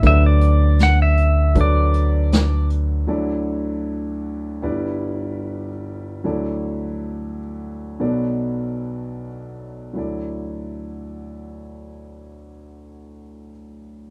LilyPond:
<<
  \new Staff \with { instrumentName = "Pedal steel guitar" } { \time 4/4 \key d \major \tempo 4 = 72 e''16 d''8. fis''16 e''8. d''4. r8 | r1 | r1 | r1 | }
  \new Staff \with { instrumentName = "Grand piano" } { \time 4/4 \key d \major <fis d' a' b'>4. r8 <fis d' a' b'>4. r8 | <fis e' a' d''>4. r8 <g e' b' d''>4. r8 | <fis e' a' d''>4. r8 <fis b a' d''>4. r8 | <fis e' a' d''>1 | }
  \new Staff \with { instrumentName = "Grand piano" } { \clef bass \time 4/4 \key d \major <d, d>1 | <d, d>2 <g,, g,>2 | <d, d>2 <b,, b,>2 | d,1 | }
  \new Staff \with { instrumentName = "Fingered electric bass" } { \clef bass \time 4/4 \key d \major d,1 | r1 | r1 | r1 | }
  \new DrumStaff \with { instrumentName = "Drums" } \drummode { \time 4/4 <hh bd>8 hh8 <hh sn>8 hh8 <hh bd>8 hh8 <hh sn>8 hh8 | r4 r4 r4 r4 | r4 r4 r4 r4 | r4 r4 r4 r4 | }
>>